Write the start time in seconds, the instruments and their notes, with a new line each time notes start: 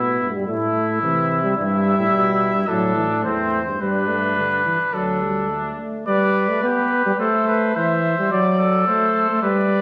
Already playing: bass trombone B2, trombone B3, trumpet E4
0.20 bass trombone G2
0.34 trombone G3
0.46 bass trombone A2, trombone A3, trumpet E4
1.02 bass trombone C3, trombone E3
1.43 trombone G3
1.57 bass trombone G2, trombone G3, trumpet E4 E5
1.99 bass trombone A2
2.12 bass trombone B2
2.54 bass trombone G2
2.68 bass trombone A2, trombone F#3, trumpet D4 A4
2.95 trombone E3
3.24 bass trombone E2, trombone A3, trumpet C4 C5
3.67 bass trombone G2
3.80 bass trombone G2, trombone G3, trumpet D4 B4
4.09 trombone A3
4.37 trombone D3
4.65 trombone E3
4.93 bass trombone D2, trombone F#3, trumpet D4 A4
5.21 trombone G3
5.50 trombone A3
5.79 trombone A3
6.07 trombone G3, trumpet B4 D5
6.49 trombone A3
6.63 trombone B3, trumpet G4 B4
7.06 trombone G3
7.19 trombone A3, trumpet A4 C5
7.47 trumpet B4
7.75 trombone E3, trumpet C5 E5
8.18 trombone G3
8.31 trombone F#3, trumpet D5
8.59 trumpet A4
8.87 trombone A3, trumpet C5
9.29 trombone A3
9.42 trombone G3, trumpet B4 D5